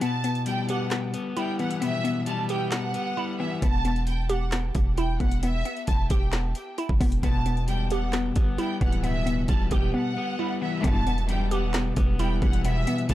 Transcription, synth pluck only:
0.01 0.23 B3 loud
0.24 0.90 B3 medium
0.70 2.05 G4 medium
0.91 1.58 B3 medium
1.37 2.72 E4 loud
1.60 1.80 B3 medium
1.82 2.03 B3 medium
2.04 2.71 B3 medium
2.50 3.63 G4 loud
2.72 3.39 B3 medium
3.17 3.62 E4 medium
3.40 3.62 B3 medium
3.63 3.84 B3 medium
3.85 4.52 B3 medium
4.30 5.65 G4 loud
4.53 5.19 B3 medium
4.98 6.33 E4 medium
5.20 5.42 B3 medium
5.43 5.64 B3 medium
5.66 6.32 B3 medium
6.11 7.23 G4 loud
6.33 6.99 B3 medium
6.78 7.23 E4 loud
7.00 7.22 B3 medium
7.23 7.45 B3 loud
7.46 8.12 B3 medium
7.92 9.27 G4 loud
8.13 8.80 B3 medium
8.58 9.94 E4 medium
8.81 9.02 B3 medium
9.03 9.25 B3 medium
9.26 9.93 B3 medium
9.72 10.84 G4 loud
9.94 10.60 B3 medium
10.39 10.84 E4 medium
10.62 10.84 B3 medium
10.85 11.06 B3 medium
11.07 11.74 B3 medium
11.51 12.87 G4 loud
11.75 12.41 B3 medium
12.20 13.14 E4 medium
12.42 12.64 B3 medium
12.65 12.86 B3 medium
12.87 13.14 B3 medium

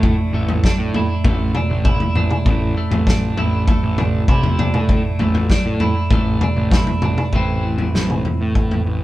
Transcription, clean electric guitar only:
0.00 0.34 A3 medium
0.00 0.65 D4 medium
0.00 0.96 E4 medium
0.04 2.46 A2 medium
0.34 1.24 A3 medium
0.65 1.56 D4 medium
0.96 1.85 E4 medium
1.25 2.77 A3 medium
1.56 2.16 D4 medium
1.85 3.37 E4 medium
2.16 3.07 D4 medium
2.47 4.90 A2 medium
2.77 3.67 A3 medium
3.07 3.97 D4 medium
3.38 4.28 E4 medium
3.67 5.19 A3 medium
3.99 4.58 D4 medium
4.29 5.80 E4 medium
4.59 5.50 D4 medium
4.90 6.42 A2 medium
5.20 6.11 A3 medium
5.51 6.42 D4 medium
5.81 6.72 E4 medium
6.12 7.34 A3 medium
6.43 7.03 D4 medium
6.73 7.34 E4 medium
7.04 7.34 D4 medium
7.33 9.04 A2 medium
7.33 9.04 E3 medium
7.33 9.04 A3 medium
7.33 9.04 C4 medium
7.33 9.04 E4 medium

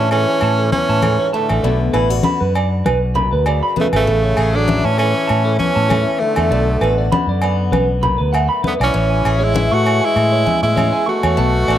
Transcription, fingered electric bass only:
0.00 0.25 A2 medium
0.42 0.70 A2 medium
0.89 1.17 A2 medium
1.50 1.63 A1 medium
1.63 1.91 B1 medium
1.94 2.22 A1 medium
2.41 2.82 F#2 medium
2.85 3.28 B1 medium
3.32 3.60 D2 medium
3.93 4.06 G#1 medium
4.07 4.35 A1 medium
4.37 4.81 A1 medium
4.85 5.13 A2 medium
5.30 5.57 A2 medium
5.76 6.04 A2 medium
6.37 6.50 E2 medium
6.51 6.79 B1 medium
6.81 7.09 A1 medium
7.27 7.68 F#2 medium
7.72 8.15 B1 medium
8.20 8.48 D2 medium
8.80 8.93 B1 medium
8.94 9.22 A1 medium
9.25 9.68 A1 medium
9.72 10.00 A2 medium
10.16 10.44 A2 medium
10.63 10.91 A2 medium
11.24 11.36 E2 medium
11.38 11.66 B1 medium
11.68 11.78 A1 medium

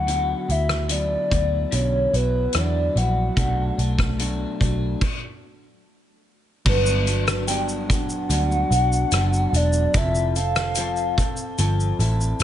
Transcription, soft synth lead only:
0.00 0.53 F#5 loud
0.51 0.93 E5 loud
0.91 1.73 D5 loud
1.74 2.17 C#5 medium
2.15 2.59 B4 medium
2.57 2.97 D5 loud
2.98 4.16 F#5 loud
6.67 7.45 B4 medium
7.47 7.61 G5 loud
7.89 9.57 F#5 loud
9.56 9.98 D5 loud
9.97 10.36 E5 loud
10.36 11.96 F5 loud

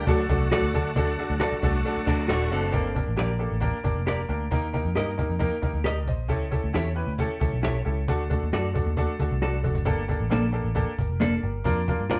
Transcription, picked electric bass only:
0.07 0.26 D2 loud
0.29 0.48 C2 medium
0.51 muted picked electric bass stroke soft
0.62 0.72 D2 medium
0.74 0.92 D3 medium
0.96 1.14 D2 loud
1.30 1.39 D2 medium
1.52 muted picked electric bass stroke soft
1.63 1.81 C2 medium
1.97 muted picked electric bass stroke soft
2.07 2.26 D2 medium
2.29 2.48 D#1 medium
2.52 2.70 F#1 medium
2.74 3.01 G1 medium
3.07 3.17 A1 medium
3.19 3.46 A#1 medium
3.52 3.70 A1 medium
3.85 3.94 G1 medium
3.96 4.24 F1 medium
4.29 4.48 D2 medium
4.52 4.80 D#2 medium
4.85 4.95 F2 medium
4.96 5.24 G2 medium
5.29 5.48 F2 medium
5.63 5.72 D#2 medium
5.74 6.07 D2 medium
6.07 6.30 A#1 medium
6.30 6.58 C#2 medium
6.64 6.73 D2 medium
6.74 7.02 E2 medium
7.07 7.26 D2 medium
7.41 7.51 C#2 medium
7.53 7.80 B1 medium
7.86 8.05 C#2 medium
8.08 8.36 D2 medium
8.43 8.52 D#2 medium
8.54 8.81 F#2 medium
8.86 9.05 D#2 medium
9.19 9.29 D2 medium
9.31 9.66 C2 medium
9.64 9.83 F#1 medium
9.87 10.14 G1 medium
10.20 10.30 A1 medium
10.32 10.59 A#1 medium
10.64 10.83 A1 medium
10.98 11.08 G1 medium
11.09 11.37 F1 medium
11.43 11.62 G1 medium
11.65 11.93 F2 medium
12.00 12.20 G2 medium

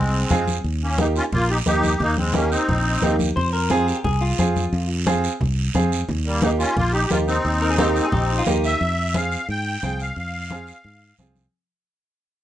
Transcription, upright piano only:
0.30 0.54 C4 medium
0.30 0.54 F4 medium
0.30 0.55 G#4 loud
0.98 1.22 A#3 medium
0.98 1.22 D#4 medium
0.98 1.23 G4 medium
1.66 1.90 A#3 medium
1.66 1.90 D#4 medium
1.66 1.91 G4 medium
2.34 2.58 A#3 medium
2.34 2.59 D#4 medium
2.34 2.59 G4 medium
3.02 3.26 A#3 medium
3.02 3.27 D#4 medium
3.02 3.27 G4 medium
3.70 3.94 C4 medium
3.70 3.94 F4 medium
3.70 3.95 G#4 loud
4.38 4.62 C4 medium
4.38 4.63 F4 medium
4.38 4.63 G#4 medium
5.06 5.30 C4 medium
5.06 5.31 F4 medium
5.06 5.31 G#4 loud
5.74 5.98 C4 medium
5.74 5.99 F4 medium
5.74 5.99 G#4 medium
6.43 6.67 A#3 medium
6.43 6.67 D#4 medium
6.43 6.67 G4 medium
7.11 7.35 A#3 medium
7.11 7.35 D#4 medium
7.11 7.35 G4 medium
7.79 8.03 A#3 medium
7.79 8.03 D#4 medium
7.79 8.03 G4 loud
8.47 8.70 A#3 medium
8.47 8.71 D#4 medium
8.47 8.71 G4 loud
9.15 9.38 C4 medium
9.15 9.39 F4 medium
9.15 9.39 G#4 medium
9.82 10.06 C4 medium
9.82 10.07 F4 medium
9.82 10.07 G#4 medium
10.51 10.75 C4 medium
10.51 10.75 F4 medium
10.51 10.75 G#4 medium
11.19 11.42 C4 medium
11.19 11.43 F4 medium
11.19 11.43 G#4 medium

